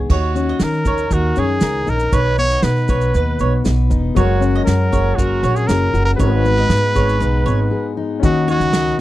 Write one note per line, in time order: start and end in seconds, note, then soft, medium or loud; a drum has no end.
0.00 0.15 B3 medium
0.00 0.38 D#4 medium
0.00 0.15 G#4 medium
0.10 0.51 D#2 medium
0.10 3.60 D#3 medium
0.10 0.65 F#4 medium
0.10 0.35 C#5 medium
0.10 kick loud
0.10 crash medium
0.35 1.36 C#4 medium
0.35 shaker medium
0.49 0.61 D#5 medium
0.60 0.81 D#3 medium
0.60 1.10 D#4 medium
0.60 1.15 A#4 medium
0.60 snare loud
0.60 shaker medium
0.73 snare soft
0.85 1.07 D#2 medium
0.85 1.61 A#4 medium
0.85 1.11 C#5 medium
0.85 kick medium
0.85 shaker medium
0.98 shaker soft
1.11 1.32 D#2 medium
1.11 1.86 D#4 soft
1.11 1.40 F#4 medium
1.11 1.36 A#4 medium
1.11 kick medium
1.11 shaker medium
1.36 1.58 F#2 medium
1.36 2.18 C#4 medium
1.36 1.91 G#4 medium
1.36 1.49 C#5 medium
1.36 shaker medium
1.60 1.83 C#2 medium
1.60 2.18 A#4 medium
1.60 snare loud
1.60 shaker medium
1.87 2.09 A#1 medium
1.87 2.18 D#4 medium
1.87 2.15 A#4 medium
1.87 shaker medium
1.99 shaker medium
2.12 2.55 B1 medium
2.12 4.17 B2 medium
2.12 2.38 B4 loud
2.12 2.37 C#5 loud
2.12 kick loud
2.12 shaker medium
2.38 3.39 B3 medium
2.38 2.65 C#5 loud
2.38 shaker soft
2.51 2.64 D#5 medium
2.51 shaker medium
2.62 2.84 B2 medium
2.62 3.13 D#4 medium
2.62 3.65 B4 medium
2.62 snare medium
2.62 shaker medium
2.76 snare soft
2.88 3.10 B1 medium
2.88 3.64 B4 medium
2.88 3.14 C#5 medium
2.88 kick medium
2.88 shaker medium
3.01 shaker soft
3.14 3.36 D#2 medium
3.14 3.89 D#4 soft
3.14 3.40 B4 medium
3.14 shaker medium
3.39 3.61 B1 medium
3.39 4.22 B3 medium
3.39 3.53 C#5 medium
3.39 shaker soft
3.65 3.87 B1 medium
3.65 4.21 B4 medium
3.65 snare loud
3.65 shaker medium
3.90 4.12 E1 medium
3.90 4.21 D#4 medium
3.90 kick medium
3.90 shaker soft
4.15 4.58 F#1 medium
4.15 6.22 F#3 medium
4.15 6.15 G#3 medium
4.15 4.64 F#4 medium
4.15 6.16 F#4 medium
4.15 4.41 C#5 loud
4.15 kick loud
4.15 shaker medium
4.19 6.17 A#4 medium
4.41 5.43 C#4 medium
4.41 shaker soft
4.55 4.67 D#5 medium
4.65 4.88 F#2 loud
4.65 5.17 F#4 medium
4.65 5.17 A#4 medium
4.65 snare medium
4.65 shaker medium
4.92 5.14 F#1 medium
4.92 5.69 G#4 medium
4.92 5.17 C#5 medium
4.92 kick medium
4.92 shaker medium
5.16 5.39 F#1 medium
5.16 5.57 F#4 medium
5.16 5.93 F#4 medium
5.16 5.43 A#4 medium
5.16 kick medium
5.16 shaker medium
5.43 5.64 A#1 medium
5.43 6.26 C#4 medium
5.43 5.56 C#5 medium
5.43 shaker medium
5.56 5.68 G#4 medium
5.56 shaker soft
5.67 5.90 F#1 loud
5.67 6.25 G#4 medium
5.67 6.05 A#4 loud
5.67 snare loud
5.67 shaker medium
5.93 6.15 F#1 medium
5.93 6.70 F#4 medium
5.93 shaker medium
6.05 6.12 A#4 loud
6.05 shaker soft
6.17 6.61 G#1 loud
6.17 8.23 G#2 medium
6.17 8.19 G#3 medium
6.17 8.19 F#4 medium
6.17 6.27 A#4 medium
6.17 7.93 B4 loud
6.17 6.44 C#5 medium
6.17 kick loud
6.17 shaker medium
6.27 8.23 B4 medium
6.45 7.45 B3 medium
6.45 shaker soft
6.58 6.70 D#5 medium
6.69 6.91 G#2 loud
6.69 7.21 D#4 medium
6.69 snare loud
6.69 shaker medium
6.84 snare soft
6.95 7.17 G#1 medium
6.95 7.70 G#4 medium
6.95 7.20 C#5 medium
6.95 kick medium
6.95 shaker medium
7.09 shaker soft
7.20 7.42 B1 medium
7.20 7.97 D#4 medium
7.20 7.45 B4 medium
7.20 shaker medium
7.46 7.67 G#1 medium
7.46 8.29 B3 medium
7.46 7.59 C#5 medium
7.46 shaker soft
7.71 8.28 G#4 medium
7.97 8.47 D#4 medium
8.20 8.55 D#2 medium
8.20 9.01 D#3 medium
8.20 9.01 C#4 medium
8.20 9.01 F#4 medium
8.20 kick loud
8.20 shaker medium
8.24 8.48 F#4 medium
8.24 9.01 D#5 medium
8.48 8.99 D#4 medium
8.48 8.97 F#4 loud
8.48 8.61 C#5 medium
8.48 shaker medium
8.60 8.92 C#2 medium
8.60 shaker medium
8.73 9.01 A#4 medium
8.73 8.98 D#5 medium
8.73 snare loud
8.73 shaker medium
8.87 snare soft